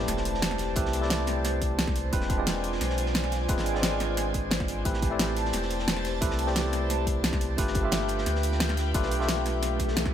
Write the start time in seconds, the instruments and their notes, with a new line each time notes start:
Already playing: tine electric piano A3 C4 E4 G4 B4 D5, analog synth pad G4 C5 A5, impact
0.08 sub bass E1, snare, closed hi-hat
0.17 snare
0.25 closed hi-hat
0.34 snare
0.42 snare, closed hi-hat
0.51 snare
0.58 snare, closed hi-hat
0.76 sub bass A1, tine electric piano A3 C4 E4 G4 B4, kick, closed hi-hat
0.85 sub bass C2, snare
0.93 closed hi-hat
1.01 tine electric piano A3 C4 E4 G4 D5, snare
1.10 snare, closed hi-hat
1.27 snare, closed hi-hat
1.45 snare, closed hi-hat
1.62 kick, closed hi-hat
1.78 snare, closed hi-hat
1.87 kick, snare
1.96 closed hi-hat
2.12 sub bass E1, tine electric piano G#3 C4 D4 F4 B4, analog synth pad F4 D5 G#5, kick, closed hi-hat
2.21 snare
2.30 kick, closed hi-hat
2.37 tine electric piano G#3 C4 D4 F4 D5
2.47 snare, closed hi-hat
2.64 closed hi-hat
2.72 snare
2.81 sub bass B1, snare, closed hi-hat
2.90 snare
2.98 closed hi-hat
3.06 snare
3.15 snare, closed hi-hat
3.24 snare
3.32 snare, closed hi-hat
3.48 sub bass E1, tine electric piano G#3 C4 D4 F4 B4, kick, closed hi-hat
3.58 sub bass G#1, snare
3.66 closed hi-hat
3.74 tine electric piano G#3 C4 D4 F4 D5, snare
3.83 snare, closed hi-hat
4.00 snare, closed hi-hat
4.17 snare, closed hi-hat
4.34 kick, closed hi-hat
4.51 snare, closed hi-hat
4.60 kick, snare
4.68 sub bass G#1, closed hi-hat
4.85 sub bass A1, tine electric piano A3 C4 E4 G4 B4, analog synth pad G4 A5, kick, closed hi-hat
4.94 snare
5.02 kick, closed hi-hat
5.10 tine electric piano A3 C4 E4 G4 D5
5.19 snare, closed hi-hat
5.37 closed hi-hat
5.45 snare
5.53 sub bass E1, snare, closed hi-hat
5.62 snare
5.70 closed hi-hat
5.79 snare
5.88 snare, closed hi-hat
5.97 snare
6.05 snare, closed hi-hat
6.21 sub bass A1, tine electric piano A3 C4 E4 G4 B4, kick, closed hi-hat
6.30 sub bass C2, snare
6.39 closed hi-hat
6.47 tine electric piano A3 C4 E4 G4 D5, snare
6.56 snare, closed hi-hat
6.73 snare, closed hi-hat
6.90 snare, closed hi-hat
7.07 kick, closed hi-hat
7.24 snare, closed hi-hat
7.33 kick, snare
7.41 closed hi-hat
7.58 sub bass G1, tine electric piano A3 D4 F4 G4 B4, analog synth pad F4 B4 G5, kick, closed hi-hat
7.67 snare
7.75 kick, closed hi-hat
7.83 tine electric piano A3 D4 F4 G4 E5
7.92 snare, closed hi-hat
8.08 closed hi-hat
8.18 snare
8.26 sub bass D2, snare, closed hi-hat
8.35 snare
8.43 closed hi-hat
8.52 snare
8.60 snare, closed hi-hat
8.69 snare
8.77 snare, closed hi-hat
8.94 sub bass G1, tine electric piano A3 D4 F4 G4 B4, kick, closed hi-hat
9.02 sub bass B1, snare
9.11 closed hi-hat
9.19 tine electric piano A3 D4 F4 G4 E5, snare
9.28 snare, closed hi-hat
9.46 snare, closed hi-hat
9.62 snare, closed hi-hat, swell
9.79 kick, closed hi-hat
9.88 snare
9.96 snare, closed hi-hat
10.06 kick, snare